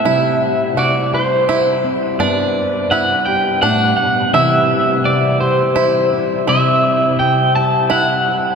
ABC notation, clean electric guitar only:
X:1
M:3/4
L:1/8
Q:1/4=84
K:Clyd
V:1 name="Clean electric guitar"
e2 d c2 z | d2 f g f f | e2 d c2 z | e2 g a f2 |]